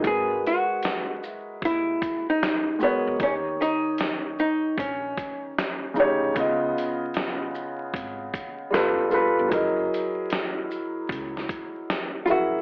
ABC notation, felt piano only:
X:1
M:4/4
L:1/8
Q:"Swing 16ths" 1/4=76
K:D#phr
V:1 name="Felt piano"
[G,FAB]3 z4 [G,FAc] | [D,D=Gc]3 z4 [C,DGc] | [C,B,^Ed]3 z3 [=G,=F=AB] [G,FAB] | [F,EGAd]3 z4 [F,EGAe] |]